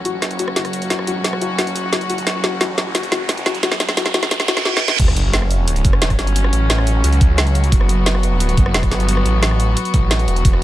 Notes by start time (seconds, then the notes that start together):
Already playing: A1 F#3 C#4 F#4, riser
0.05 F#4, closed hi-hat
0.22 F#1, snare, closed hi-hat
0.31 closed hi-hat
0.39 F#4, closed hi-hat
0.48 cross-stick
0.56 F#4, snare, closed hi-hat
0.65 cross-stick, closed hi-hat
0.73 closed hi-hat
0.82 closed hi-hat
0.90 F#4, snare, closed hi-hat
0.99 cross-stick
1.07 E1 F#4, closed hi-hat
1.24 snare, closed hi-hat
1.33 cross-stick
1.41 F#1 F#4, closed hi-hat
1.59 F#4, snare, closed hi-hat
1.67 closed hi-hat
1.76 closed hi-hat
1.93 F#4, snare, closed hi-hat
2.01 closed hi-hat
2.10 F#4, closed hi-hat
2.18 closed hi-hat
2.27 F#1, snare, closed hi-hat
2.44 F#4, snare, closed hi-hat
2.61 A1 F#4, snare, closed hi-hat
2.78 snare, closed hi-hat
2.95 F#1 F#4, snare, closed hi-hat
3.03 closed hi-hat
3.12 F#4, snare, closed hi-hat
3.29 snare, closed hi-hat
3.37 closed hi-hat
3.46 F#4, snare, closed hi-hat
3.55 closed hi-hat
3.63 F#4, snare, closed hi-hat
3.72 snare
3.80 E1, snare, closed hi-hat
3.89 snare
3.97 F#4, snare, closed hi-hat
4.06 snare
4.14 F#1 F#4, snare, closed hi-hat
4.23 snare
4.31 snare, closed hi-hat, reverse cymbal
4.40 snare, closed hi-hat
4.48 F#4, snare, closed hi-hat
4.57 snare
4.65 F#4, snare
4.77 snare
4.88 snare
4.99 F#1 F#3 C#4 F#4, kick, closed hi-hat, crash, sub drop
5.08 cross-stick
5.16 closed hi-hat
5.34 snare, closed hi-hat
5.42 cross-stick
5.51 closed hi-hat
5.68 closed hi-hat
5.76 closed hi-hat
5.85 F#1, kick, closed hi-hat
5.93 cross-stick
6.02 E1, snare, closed hi-hat
6.10 kick, cross-stick, closed hi-hat
6.19 G1, snare, closed hi-hat
6.27 closed hi-hat
6.36 closed hi-hat
6.44 cross-stick
6.53 A1, closed hi-hat
6.70 snare, closed hi-hat
6.78 cross-stick
6.87 closed hi-hat
7.04 C#2, closed hi-hat
7.13 closed hi-hat
7.21 kick, closed hi-hat
7.38 snare, closed hi-hat
7.47 closed hi-hat
7.55 closed hi-hat
7.64 closed hi-hat
7.72 F#1 B3, kick, closed hi-hat
7.81 cross-stick
7.89 closed hi-hat
8.06 snare, closed hi-hat
8.15 cross-stick
8.23 closed hi-hat
8.40 closed hi-hat
8.49 closed hi-hat
8.57 F#1, kick, closed hi-hat
8.66 cross-stick
8.74 E1, snare, closed hi-hat
8.83 kick, cross-stick, closed hi-hat
8.91 G1, snare, closed hi-hat
9.00 closed hi-hat
9.09 closed hi-hat
9.17 cross-stick
9.26 A1, closed hi-hat
9.43 snare, closed hi-hat
9.51 cross-stick
9.60 closed hi-hat
9.77 closed hi-hat
9.85 closed hi-hat
9.94 A1, kick, closed hi-hat
10.11 snare, closed hi-hat
10.19 closed hi-hat
10.28 E1, closed hi-hat
10.36 closed hi-hat
10.45 E1 E3 B3, kick, closed hi-hat
10.53 cross-stick